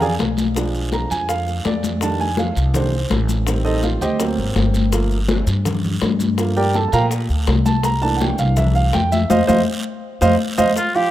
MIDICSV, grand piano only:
0, 0, Header, 1, 2, 480
1, 0, Start_track
1, 0, Tempo, 364299
1, 742, Time_signature, 4, 2, 24, 8
1, 14636, End_track
2, 0, Start_track
2, 0, Title_t, "Grand piano"
2, 0, Program_c, 0, 0
2, 22, Note_on_c, 0, 80, 91
2, 25, Note_on_c, 0, 68, 78
2, 28, Note_on_c, 0, 77, 79
2, 29, Note_on_c, 0, 74, 75
2, 166, Note_off_c, 0, 80, 0
2, 168, Note_off_c, 0, 68, 0
2, 171, Note_off_c, 0, 74, 0
2, 171, Note_off_c, 0, 77, 0
2, 733, Note_on_c, 0, 53, 63
2, 747, Note_on_c, 0, 56, 51
2, 754, Note_on_c, 0, 62, 61
2, 1228, Note_on_c, 0, 82, 76
2, 1456, Note_off_c, 0, 82, 0
2, 1464, Note_on_c, 0, 80, 95
2, 1694, Note_off_c, 0, 80, 0
2, 1701, Note_on_c, 0, 77, 95
2, 2145, Note_off_c, 0, 77, 0
2, 2186, Note_on_c, 0, 74, 74
2, 2599, Note_off_c, 0, 53, 0
2, 2606, Note_off_c, 0, 56, 0
2, 2610, Note_off_c, 0, 62, 0
2, 2627, Note_off_c, 0, 74, 0
2, 2660, Note_on_c, 0, 51, 57
2, 2664, Note_on_c, 0, 55, 50
2, 2671, Note_on_c, 0, 57, 50
2, 2671, Note_on_c, 0, 81, 91
2, 2677, Note_on_c, 0, 62, 61
2, 2896, Note_off_c, 0, 81, 0
2, 2904, Note_on_c, 0, 80, 90
2, 2977, Note_off_c, 0, 51, 0
2, 2979, Note_off_c, 0, 55, 0
2, 2982, Note_off_c, 0, 57, 0
2, 2986, Note_off_c, 0, 62, 0
2, 3132, Note_off_c, 0, 80, 0
2, 3148, Note_on_c, 0, 77, 75
2, 3588, Note_off_c, 0, 77, 0
2, 3621, Note_on_c, 0, 51, 50
2, 3623, Note_on_c, 0, 55, 49
2, 3626, Note_on_c, 0, 57, 50
2, 3630, Note_on_c, 0, 62, 59
2, 3633, Note_on_c, 0, 72, 78
2, 3833, Note_off_c, 0, 51, 0
2, 3835, Note_off_c, 0, 55, 0
2, 3836, Note_off_c, 0, 57, 0
2, 3838, Note_off_c, 0, 62, 0
2, 4070, Note_off_c, 0, 72, 0
2, 4564, Note_on_c, 0, 51, 59
2, 4573, Note_on_c, 0, 55, 49
2, 4583, Note_on_c, 0, 60, 62
2, 4805, Note_on_c, 0, 75, 84
2, 4810, Note_on_c, 0, 69, 73
2, 4813, Note_on_c, 0, 63, 68
2, 4813, Note_on_c, 0, 72, 73
2, 5041, Note_off_c, 0, 75, 0
2, 5043, Note_off_c, 0, 69, 0
2, 5045, Note_off_c, 0, 63, 0
2, 5045, Note_off_c, 0, 72, 0
2, 5051, Note_on_c, 0, 77, 71
2, 5058, Note_on_c, 0, 65, 58
2, 5284, Note_off_c, 0, 77, 0
2, 5288, Note_off_c, 0, 65, 0
2, 5291, Note_on_c, 0, 79, 90
2, 5296, Note_on_c, 0, 67, 79
2, 5296, Note_on_c, 0, 72, 75
2, 5298, Note_on_c, 0, 75, 80
2, 5479, Note_off_c, 0, 51, 0
2, 5484, Note_off_c, 0, 55, 0
2, 5489, Note_off_c, 0, 60, 0
2, 5514, Note_on_c, 0, 54, 60
2, 5524, Note_off_c, 0, 79, 0
2, 5526, Note_off_c, 0, 67, 0
2, 5526, Note_off_c, 0, 72, 0
2, 5526, Note_on_c, 0, 58, 59
2, 5527, Note_off_c, 0, 75, 0
2, 5535, Note_on_c, 0, 60, 65
2, 6433, Note_off_c, 0, 54, 0
2, 6440, Note_off_c, 0, 58, 0
2, 6444, Note_off_c, 0, 60, 0
2, 6483, Note_on_c, 0, 53, 60
2, 6487, Note_on_c, 0, 57, 54
2, 6497, Note_on_c, 0, 58, 61
2, 6806, Note_off_c, 0, 53, 0
2, 6808, Note_off_c, 0, 57, 0
2, 6813, Note_off_c, 0, 58, 0
2, 8406, Note_on_c, 0, 53, 61
2, 8414, Note_on_c, 0, 57, 53
2, 8422, Note_on_c, 0, 58, 66
2, 8650, Note_on_c, 0, 79, 95
2, 8652, Note_on_c, 0, 74, 83
2, 8654, Note_on_c, 0, 67, 80
2, 8654, Note_on_c, 0, 70, 79
2, 8728, Note_off_c, 0, 53, 0
2, 8732, Note_off_c, 0, 57, 0
2, 8736, Note_off_c, 0, 58, 0
2, 8883, Note_off_c, 0, 79, 0
2, 8885, Note_off_c, 0, 70, 0
2, 8885, Note_off_c, 0, 74, 0
2, 8886, Note_off_c, 0, 67, 0
2, 8897, Note_on_c, 0, 81, 86
2, 8903, Note_on_c, 0, 69, 70
2, 9051, Note_off_c, 0, 81, 0
2, 9070, Note_on_c, 0, 81, 70
2, 9106, Note_off_c, 0, 81, 0
2, 9129, Note_on_c, 0, 53, 52
2, 9130, Note_off_c, 0, 69, 0
2, 9131, Note_on_c, 0, 82, 111
2, 9134, Note_on_c, 0, 57, 44
2, 9134, Note_on_c, 0, 70, 78
2, 9137, Note_on_c, 0, 79, 85
2, 9138, Note_on_c, 0, 58, 53
2, 9140, Note_on_c, 0, 77, 94
2, 9276, Note_off_c, 0, 82, 0
2, 9277, Note_off_c, 0, 70, 0
2, 9280, Note_off_c, 0, 79, 0
2, 9282, Note_off_c, 0, 77, 0
2, 9346, Note_off_c, 0, 53, 0
2, 9349, Note_off_c, 0, 57, 0
2, 9351, Note_off_c, 0, 58, 0
2, 10088, Note_on_c, 0, 81, 100
2, 10324, Note_off_c, 0, 81, 0
2, 10336, Note_on_c, 0, 82, 105
2, 10558, Note_on_c, 0, 52, 56
2, 10562, Note_on_c, 0, 57, 55
2, 10568, Note_off_c, 0, 82, 0
2, 10569, Note_on_c, 0, 81, 102
2, 10570, Note_on_c, 0, 58, 49
2, 10575, Note_on_c, 0, 62, 62
2, 10761, Note_on_c, 0, 78, 54
2, 10794, Note_off_c, 0, 78, 0
2, 10805, Note_off_c, 0, 81, 0
2, 10824, Note_on_c, 0, 79, 76
2, 11053, Note_off_c, 0, 79, 0
2, 11055, Note_on_c, 0, 77, 89
2, 11288, Note_off_c, 0, 77, 0
2, 11296, Note_on_c, 0, 76, 87
2, 11529, Note_off_c, 0, 76, 0
2, 11531, Note_on_c, 0, 77, 97
2, 11767, Note_off_c, 0, 77, 0
2, 11776, Note_on_c, 0, 79, 108
2, 12010, Note_off_c, 0, 79, 0
2, 12017, Note_on_c, 0, 76, 98
2, 12197, Note_off_c, 0, 52, 0
2, 12199, Note_off_c, 0, 57, 0
2, 12203, Note_off_c, 0, 58, 0
2, 12206, Note_off_c, 0, 62, 0
2, 12251, Note_off_c, 0, 76, 0
2, 12256, Note_on_c, 0, 72, 96
2, 12256, Note_on_c, 0, 77, 101
2, 12258, Note_on_c, 0, 75, 96
2, 12411, Note_off_c, 0, 72, 0
2, 12411, Note_off_c, 0, 77, 0
2, 12412, Note_off_c, 0, 75, 0
2, 12484, Note_on_c, 0, 72, 109
2, 12490, Note_on_c, 0, 75, 90
2, 12493, Note_on_c, 0, 77, 93
2, 12644, Note_off_c, 0, 72, 0
2, 12647, Note_off_c, 0, 75, 0
2, 12649, Note_off_c, 0, 77, 0
2, 13462, Note_on_c, 0, 72, 111
2, 13462, Note_on_c, 0, 75, 96
2, 13463, Note_on_c, 0, 77, 109
2, 13616, Note_off_c, 0, 72, 0
2, 13616, Note_off_c, 0, 75, 0
2, 13617, Note_off_c, 0, 77, 0
2, 13938, Note_on_c, 0, 75, 104
2, 13941, Note_on_c, 0, 77, 106
2, 13943, Note_on_c, 0, 72, 105
2, 14095, Note_off_c, 0, 75, 0
2, 14096, Note_off_c, 0, 77, 0
2, 14098, Note_off_c, 0, 72, 0
2, 14433, Note_on_c, 0, 53, 77
2, 14434, Note_on_c, 0, 65, 78
2, 14437, Note_on_c, 0, 77, 90
2, 14636, Note_off_c, 0, 53, 0
2, 14636, Note_off_c, 0, 65, 0
2, 14636, Note_off_c, 0, 77, 0
2, 14636, End_track
0, 0, End_of_file